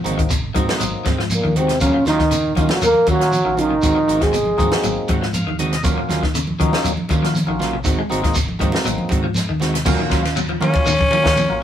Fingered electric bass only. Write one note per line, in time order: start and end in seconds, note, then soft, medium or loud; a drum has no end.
0.05 0.50 G#1 medium
0.56 0.67 G#2 loud
0.81 0.93 G#1 medium
1.07 1.40 G#2 medium
1.44 1.77 D#2 medium
1.81 1.93 D#2 loud
2.05 2.51 D#2 medium
2.57 2.69 D#3 medium
2.82 2.94 D#2 medium
3.08 3.42 D#3 medium
3.45 3.79 A#1 medium
3.83 3.95 G#1 loud
4.08 4.53 G#1 medium
4.59 4.70 G#2 medium
4.84 4.96 G#1 medium
5.09 5.43 G#2 loud
5.46 5.80 D#2 loud
5.85 5.96 D#2 loud
5.98 muted fingered electric bass stroke soft
6.09 6.54 D#2 medium
6.61 6.72 D#3 loud
6.84 6.96 D#2 loud
7.10 7.44 D#3 loud
7.48 7.81 A#1 medium
7.86 7.98 G#1 loud
8.11 8.56 G#1 medium
8.61 8.73 G#2 medium
8.85 8.97 G#1 medium
9.11 9.45 G#2 medium
9.49 9.82 D#2 medium
9.87 9.98 D#2 loud
10.12 10.56 D#2 medium
10.61 10.73 D#3 medium
10.86 10.98 D#2 loud
11.11 11.45 D#3 medium
11.50 11.63 A#1 medium